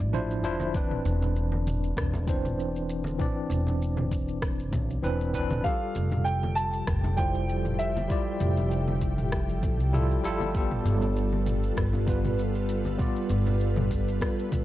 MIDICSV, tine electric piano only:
0, 0, Header, 1, 2, 480
1, 0, Start_track
1, 0, Tempo, 612245
1, 588, Time_signature, 4, 2, 24, 8
1, 11482, End_track
2, 0, Start_track
2, 0, Title_t, "Tine electric piano"
2, 0, Program_c, 0, 4
2, 0, Control_c, 0, 64, 127
2, 0, Note_on_c, 0, 53, 82
2, 0, Note_on_c, 0, 62, 76
2, 0, Note_on_c, 0, 64, 76
2, 0, Note_on_c, 0, 76, 90
2, 79, Note_off_c, 0, 62, 0
2, 85, Note_off_c, 0, 64, 0
2, 87, Note_off_c, 0, 76, 0
2, 102, Note_off_c, 0, 53, 0
2, 102, Note_on_c, 0, 53, 92
2, 103, Note_on_c, 0, 62, 88
2, 110, Note_on_c, 0, 64, 85
2, 112, Note_on_c, 0, 72, 102
2, 318, Note_off_c, 0, 53, 0
2, 319, Note_off_c, 0, 62, 0
2, 322, Note_off_c, 0, 64, 0
2, 323, Note_off_c, 0, 72, 0
2, 342, Note_on_c, 0, 53, 95
2, 344, Note_on_c, 0, 62, 84
2, 348, Note_on_c, 0, 64, 89
2, 352, Note_on_c, 0, 72, 100
2, 558, Note_off_c, 0, 53, 0
2, 559, Note_off_c, 0, 62, 0
2, 561, Note_off_c, 0, 64, 0
2, 563, Note_off_c, 0, 72, 0
2, 577, Note_on_c, 0, 52, 95
2, 588, Note_on_c, 0, 60, 86
2, 593, Note_on_c, 0, 62, 82
2, 598, Control_c, 0, 64, 0
2, 602, Note_on_c, 0, 71, 91
2, 757, Control_c, 0, 64, 127
2, 1756, Note_off_c, 0, 52, 0
2, 1761, Note_off_c, 0, 60, 0
2, 1764, Note_off_c, 0, 62, 0
2, 1768, Note_off_c, 0, 71, 0
2, 1774, Note_on_c, 0, 52, 82
2, 1781, Note_on_c, 0, 60, 72
2, 1791, Note_on_c, 0, 62, 72
2, 1800, Note_on_c, 0, 72, 82
2, 2474, Note_off_c, 0, 52, 0
2, 2478, Note_off_c, 0, 60, 0
2, 2483, Note_off_c, 0, 62, 0
2, 2487, Note_off_c, 0, 72, 0
2, 2493, Note_on_c, 0, 52, 84
2, 2501, Note_on_c, 0, 60, 73
2, 2511, Note_on_c, 0, 62, 73
2, 2519, Note_on_c, 0, 74, 89
2, 3914, Note_off_c, 0, 52, 0
2, 3918, Note_off_c, 0, 60, 0
2, 3923, Note_off_c, 0, 62, 0
2, 3927, Note_off_c, 0, 74, 0
2, 3940, Note_on_c, 0, 52, 88
2, 3944, Note_on_c, 0, 60, 87
2, 3949, Note_on_c, 0, 62, 80
2, 3952, Note_on_c, 0, 71, 102
2, 4157, Note_off_c, 0, 52, 0
2, 4159, Note_off_c, 0, 60, 0
2, 4162, Note_off_c, 0, 62, 0
2, 4163, Note_off_c, 0, 71, 0
2, 4180, Note_on_c, 0, 52, 92
2, 4185, Note_on_c, 0, 60, 80
2, 4189, Note_on_c, 0, 62, 88
2, 4193, Note_on_c, 0, 71, 100
2, 4397, Note_off_c, 0, 52, 0
2, 4400, Note_off_c, 0, 60, 0
2, 4402, Note_off_c, 0, 62, 0
2, 4404, Note_off_c, 0, 71, 0
2, 4417, Note_on_c, 0, 55, 89
2, 4427, Note_on_c, 0, 67, 81
2, 4434, Note_on_c, 0, 65, 79
2, 4437, Control_c, 0, 64, 0
2, 4442, Note_on_c, 0, 69, 94
2, 4554, Control_c, 0, 64, 127
2, 5596, Note_off_c, 0, 55, 0
2, 5601, Note_off_c, 0, 67, 0
2, 5604, Note_off_c, 0, 65, 0
2, 5608, Note_off_c, 0, 69, 0
2, 5615, Note_on_c, 0, 55, 81
2, 5623, Note_on_c, 0, 64, 72
2, 5631, Note_on_c, 0, 65, 69
2, 5639, Note_on_c, 0, 72, 83
2, 6315, Note_off_c, 0, 55, 0
2, 6319, Note_off_c, 0, 64, 0
2, 6323, Note_off_c, 0, 65, 0
2, 6327, Note_off_c, 0, 72, 0
2, 6336, Note_on_c, 0, 55, 87
2, 6347, Note_on_c, 0, 64, 78
2, 6355, Note_on_c, 0, 65, 78
2, 6362, Note_on_c, 0, 74, 92
2, 7755, Note_off_c, 0, 55, 0
2, 7761, Note_off_c, 0, 64, 0
2, 7765, Note_off_c, 0, 65, 0
2, 7768, Note_off_c, 0, 74, 0
2, 7784, Note_on_c, 0, 55, 93
2, 7788, Note_on_c, 0, 64, 87
2, 7792, Note_on_c, 0, 65, 86
2, 7795, Note_on_c, 0, 69, 106
2, 7999, Note_off_c, 0, 55, 0
2, 8001, Note_off_c, 0, 64, 0
2, 8003, Note_off_c, 0, 65, 0
2, 8005, Note_off_c, 0, 69, 0
2, 8025, Note_on_c, 0, 55, 97
2, 8029, Note_on_c, 0, 64, 88
2, 8035, Note_on_c, 0, 65, 87
2, 8037, Note_on_c, 0, 69, 109
2, 8240, Note_off_c, 0, 55, 0
2, 8242, Note_off_c, 0, 64, 0
2, 8245, Note_off_c, 0, 65, 0
2, 8246, Note_off_c, 0, 69, 0
2, 8258, Note_on_c, 0, 55, 88
2, 8269, Note_on_c, 0, 59, 84
2, 8276, Note_on_c, 0, 65, 85
2, 8279, Control_c, 0, 64, 0
2, 8285, Note_on_c, 0, 69, 95
2, 8401, Control_c, 0, 64, 127
2, 9436, Note_off_c, 0, 55, 0
2, 9441, Note_off_c, 0, 59, 0
2, 9445, Note_off_c, 0, 65, 0
2, 9449, Note_off_c, 0, 69, 0
2, 9458, Note_on_c, 0, 55, 77
2, 9466, Note_on_c, 0, 59, 74
2, 9473, Note_on_c, 0, 65, 77
2, 9485, Note_on_c, 0, 71, 91
2, 10156, Note_off_c, 0, 55, 0
2, 10160, Note_off_c, 0, 59, 0
2, 10164, Note_off_c, 0, 65, 0
2, 10170, Note_off_c, 0, 71, 0
2, 10173, Note_on_c, 0, 55, 83
2, 10182, Note_on_c, 0, 59, 79
2, 10191, Note_on_c, 0, 65, 77
2, 10201, Note_on_c, 0, 74, 88
2, 11482, Note_off_c, 0, 55, 0
2, 11482, Note_off_c, 0, 59, 0
2, 11482, Note_off_c, 0, 65, 0
2, 11482, Note_off_c, 0, 74, 0
2, 11482, End_track
0, 0, End_of_file